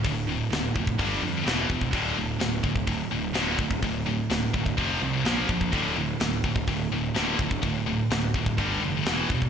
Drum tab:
HH |o---o---o---o---|o---o---o---o---|o---o---o---o---|o---o---o---o---|
SD |----o-------o---|----o-------o---|----o-------o---|----o-------o---|
BD |o-----ooo-----oo|o-----ooo-----oo|o-----ooo-----oo|o-----ooo-----oo|

HH |o---o---o---o---|
SD |----o-------o---|
BD |o-----ooo-----oo|